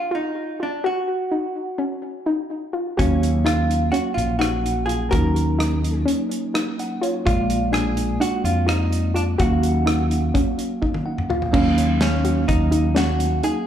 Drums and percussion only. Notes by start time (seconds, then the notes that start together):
2.99 kick, closed hi-hat
3.23 closed hi-hat
3.47 cross-stick, closed hi-hat
3.71 closed hi-hat
3.94 closed hi-hat
4.18 closed hi-hat
4.41 cross-stick, closed hi-hat
4.66 closed hi-hat
4.89 closed hi-hat
5.12 kick, closed hi-hat
5.36 closed hi-hat
5.60 cross-stick, closed hi-hat
5.84 closed hi-hat
6.08 closed hi-hat
6.31 closed hi-hat
6.55 cross-stick, closed hi-hat
6.79 closed hi-hat
7.03 closed hi-hat
7.27 kick, closed hi-hat
7.50 closed hi-hat
7.74 cross-stick, closed hi-hat
7.97 closed hi-hat
8.22 closed hi-hat
8.45 closed hi-hat
8.69 cross-stick, closed hi-hat
8.93 closed hi-hat
9.16 closed hi-hat
9.39 kick, closed hi-hat
9.63 closed hi-hat
9.87 cross-stick, closed hi-hat
10.11 closed hi-hat
10.35 kick, closed hi-hat
10.59 closed hi-hat
10.82 kick
10.94 high tom
11.18 mid tom
11.30 floor tom
11.42 floor tom
11.54 kick, crash
11.78 closed hi-hat
12.01 snare, closed hi-hat
12.25 closed hi-hat
12.49 kick, closed hi-hat
12.72 closed hi-hat
12.96 snare, closed hi-hat
13.20 closed hi-hat
13.43 closed hi-hat